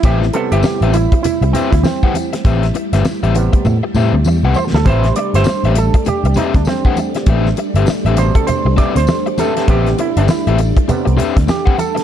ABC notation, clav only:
X:1
M:4/4
L:1/16
Q:"Swing 16ths" 1/4=100
K:Am
V:1 name="Clav"
G2 A G3 E2 E2 C E C4- | C2 z12 c A | c2 d c3 A2 G2 ^D =D C4- | C2 z4 c A c2 d c3 A2 |
G2 E D E6 z2 G2 A2 |]
V:2 name="Clav" clef=bass
z2 [C,G,B,]12- [C,G,B,]2- | [C,G,B,]2 z4 [C,G,B,]2 z8 | [C,G,B]16 | z6 [B,,C,G,]6 z4 |
[C,G,B,]2 z6 [C,G,B,]2 z6 |]